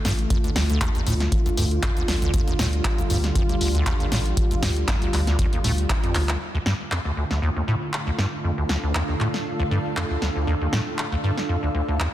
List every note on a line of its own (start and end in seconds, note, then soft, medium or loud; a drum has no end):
0.00 6.37 D3 medium
0.00 2.30 A3 medium
0.00 6.37 F4 medium
0.05 0.26 A1 medium
0.05 0.12 G2 loud
0.05 snare medium
0.05 open hi-hat medium
0.19 closed hi-hat soft
0.30 0.38 F2 medium
0.30 kick loud
0.30 closed hi-hat medium
0.44 0.51 D2 medium
0.44 closed hi-hat soft
0.56 0.63 D2 medium
0.56 0.77 D2 loud
0.56 snare medium
0.56 open hi-hat loud
0.69 0.79 D2 medium
0.69 closed hi-hat soft
0.81 0.89 D#2 loud
0.81 kick loud
0.81 clap loud
0.81 closed hi-hat medium
0.95 1.01 D#2 medium
0.95 closed hi-hat soft
1.07 1.28 D2 loud
1.07 1.14 A2 loud
1.07 open hi-hat medium
1.20 snare soft
1.20 closed hi-hat soft
1.32 kick loud
1.32 closed hi-hat medium
1.46 1.50 D2 loud
1.46 closed hi-hat soft
1.57 1.79 D2 medium
1.57 1.65 G2 loud
1.57 open hi-hat loud
1.71 closed hi-hat soft
1.83 1.91 F2 medium
1.83 kick loud
1.83 clap loud
1.83 closed hi-hat medium
1.97 2.03 D2 medium
1.97 closed hi-hat soft
2.08 2.30 A1 medium
2.08 2.16 D2 medium
2.08 snare medium
2.08 open hi-hat medium
2.22 2.32 D2 medium
2.22 closed hi-hat soft
2.34 2.41 D#2 loud
2.34 6.37 G3 medium
2.34 kick loud
2.34 closed hi-hat loud
2.48 2.54 D#2 medium
2.48 closed hi-hat soft
2.59 2.81 D2 loud
2.59 2.67 A2 loud
2.59 snare medium
2.59 open hi-hat loud
2.73 closed hi-hat soft
2.85 kick loud
2.85 clap loud
2.85 closed hi-hat loud
2.98 3.02 D2 loud
2.98 closed hi-hat soft
3.10 3.31 D2 loud
3.10 3.18 G2 loud
3.10 open hi-hat medium
3.24 snare soft
3.24 closed hi-hat soft
3.35 3.43 F2 medium
3.35 kick loud
3.35 closed hi-hat medium
3.49 3.56 D2 medium
3.49 closed hi-hat soft
3.61 3.82 D2 medium
3.61 3.69 D2 medium
3.61 open hi-hat loud
3.75 3.84 D2 medium
3.75 closed hi-hat soft
3.86 3.94 D#2 loud
3.86 kick loud
3.86 clap loud
3.86 closed hi-hat loud
4.00 4.06 D#2 medium
4.00 closed hi-hat soft
4.12 4.33 A1 medium
4.12 4.19 A2 loud
4.12 snare medium
4.12 open hi-hat medium
4.26 closed hi-hat soft
4.37 kick loud
4.37 closed hi-hat loud
4.51 4.55 D2 loud
4.51 closed hi-hat soft
4.63 4.84 D2 loud
4.63 4.70 G2 loud
4.63 snare medium
4.63 open hi-hat loud
4.76 closed hi-hat soft
4.88 4.96 F2 medium
4.88 kick loud
4.88 snare medium
4.88 clap loud
4.88 closed hi-hat loud
5.02 5.08 D2 medium
5.02 closed hi-hat soft
5.13 5.21 D2 medium
5.13 5.35 D2 loud
5.13 clap soft
5.13 open hi-hat medium
5.27 5.37 D2 medium
5.27 snare soft
5.27 closed hi-hat soft
5.39 5.46 D#2 loud
5.39 kick loud
5.39 closed hi-hat loud
5.53 5.59 D#2 medium
5.53 closed hi-hat soft
5.64 5.86 D2 loud
5.64 5.72 A2 loud
5.64 open hi-hat loud
5.78 closed hi-hat soft
5.90 5.94 D2 medium
5.90 kick loud
5.90 clap loud
5.90 closed hi-hat loud
6.03 6.17 F2 medium
6.03 closed hi-hat soft
6.15 6.23 D2 loud
6.15 6.37 D2 medium
6.15 clap medium
6.15 open hi-hat medium
6.29 clap loud
6.29 closed hi-hat soft
6.41 12.13 D3 medium
6.41 12.13 A3 medium
6.41 12.13 D4 medium
6.41 12.13 F4 medium
6.54 6.58 D2 loud
6.64 6.74 G2 loud
6.64 12.13 F5 medium
6.64 snare medium
6.72 12.13 A4 medium
6.91 6.99 F2 medium
6.91 clap loud
7.05 7.12 D2 medium
7.17 7.24 D2 medium
7.31 7.40 D2 medium
7.31 snare soft
7.42 7.50 D#2 loud
7.56 7.62 D#2 medium
7.68 7.75 A2 loud
7.93 clap loud
8.07 8.11 D2 loud
8.18 8.26 G2 loud
8.18 snare medium
8.44 8.52 F2 medium
8.58 8.64 D2 medium
8.69 8.77 D2 medium
8.69 snare medium
8.83 8.93 D2 medium
8.95 9.02 D#2 loud
8.95 clap loud
9.09 9.15 D#2 medium
9.20 9.28 A2 loud
9.20 clap soft
9.34 snare soft
9.59 9.63 D2 loud
9.71 9.79 G2 loud
9.96 10.04 F2 medium
9.96 clap loud
10.10 10.17 D2 medium
10.22 10.29 D2 medium
10.22 snare medium
10.36 10.45 D2 medium
10.47 10.55 D#2 loud
10.61 10.68 D#2 medium
10.73 10.80 A2 loud
10.73 snare medium
10.98 clap loud
11.12 11.16 D2 loud
11.24 11.31 G2 loud
11.37 snare soft
11.49 11.57 F2 medium
11.63 11.69 D2 medium
11.74 11.82 D2 medium
11.88 11.98 D2 medium
12.00 12.07 D#2 loud
12.00 clap loud